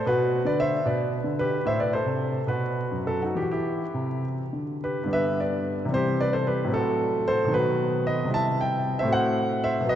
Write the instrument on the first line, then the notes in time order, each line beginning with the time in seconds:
grand piano
0.06 B2 F#4 B4
0.45 D3 B4 D5
0.60 C5 E5
0.85 B2 B4 D5
1.24 D3
1.39 G4 B4
1.65 A2 C5 E5
1.80 B4 D5
1.93 A4 C5
2.06 C3
2.47 B2 F#4 B4
2.91 F#2
3.07 F#4 A4
3.23 D#4 F#4
3.35 E3 G4
3.42 F#4
3.51 E4 G4
3.94 C3
4.53 D3
4.84 G4 B4
5.04 G2 D3
5.08 G3 B3
5.13 B4 E5
5.40 B4 D5
5.85 C3 E3
5.89 G3 C4
5.94 G4 C5
6.21 B4 D5
6.33 A4 C5
6.47 G4 B4
6.64 A2 F#3 C4
6.74 F#4 A4
7.28 A4 C5
7.45 B2 D#3
7.49 F#3 B3
7.54 F#4 B4
8.07 B4 D#5
8.24 C3 G3
8.29 C4 E4
8.34 E5 A5
8.61 E5 G5
8.99 A2 C5 E5
9.05 A3 C4 F#4
9.13 C5 F#5
9.64 C5 E5
9.80 B2 F#3
9.84 B3 F#4
9.89 B4 D#5